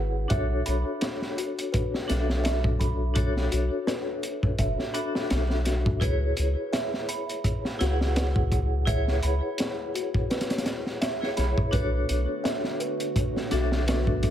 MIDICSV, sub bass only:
0, 0, Header, 1, 2, 480
1, 0, Start_track
1, 0, Tempo, 714286
1, 204, Time_signature, 4, 2, 24, 8
1, 9613, End_track
2, 0, Start_track
2, 0, Title_t, "Sub bass"
2, 0, Program_c, 0, 38
2, 0, Note_on_c, 0, 32, 93
2, 183, Note_off_c, 0, 32, 0
2, 209, Note_on_c, 0, 35, 97
2, 421, Note_off_c, 0, 35, 0
2, 455, Note_on_c, 0, 35, 92
2, 568, Note_off_c, 0, 35, 0
2, 1413, Note_on_c, 0, 35, 92
2, 2348, Note_off_c, 0, 35, 0
2, 2371, Note_on_c, 0, 35, 98
2, 2486, Note_off_c, 0, 35, 0
2, 3084, Note_on_c, 0, 30, 83
2, 3202, Note_off_c, 0, 30, 0
2, 3571, Note_on_c, 0, 35, 87
2, 4027, Note_off_c, 0, 35, 0
2, 4043, Note_on_c, 0, 37, 102
2, 4258, Note_off_c, 0, 37, 0
2, 4291, Note_on_c, 0, 37, 98
2, 4406, Note_off_c, 0, 37, 0
2, 5248, Note_on_c, 0, 37, 92
2, 6186, Note_off_c, 0, 37, 0
2, 6206, Note_on_c, 0, 37, 95
2, 6324, Note_off_c, 0, 37, 0
2, 7648, Note_on_c, 0, 35, 78
2, 7764, Note_off_c, 0, 35, 0
2, 7885, Note_on_c, 0, 35, 96
2, 8099, Note_off_c, 0, 35, 0
2, 8130, Note_on_c, 0, 35, 94
2, 8245, Note_off_c, 0, 35, 0
2, 9088, Note_on_c, 0, 35, 90
2, 9613, Note_off_c, 0, 35, 0
2, 9613, End_track
0, 0, End_of_file